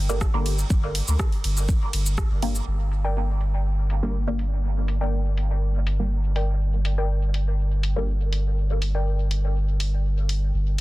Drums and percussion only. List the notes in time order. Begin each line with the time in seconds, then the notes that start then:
0.09 shaker
0.21 kick, cross-stick, ride, shaker
0.46 open hi-hat, ride
0.59 shaker
0.70 kick, ride, shaker
0.95 open hi-hat, ride
1.08 shaker
1.19 kick, cross-stick, ride, shaker
1.32 open hi-hat
1.44 open hi-hat, ride
1.57 shaker
1.69 kick, ride, shaker
1.93 open hi-hat, ride
2.06 shaker
2.18 kick, cross-stick, ride, shaker
2.42 open hi-hat, ride
2.55 shaker
2.92 open hi-hat
3.41 open hi-hat
3.90 open hi-hat
4.39 open hi-hat
4.88 open hi-hat
5.37 open hi-hat
5.87 open hi-hat
6.36 open hi-hat
6.85 open hi-hat
7.34 open hi-hat
7.83 open hi-hat
8.33 open hi-hat
8.82 open hi-hat
9.31 open hi-hat
9.80 open hi-hat
10.29 open hi-hat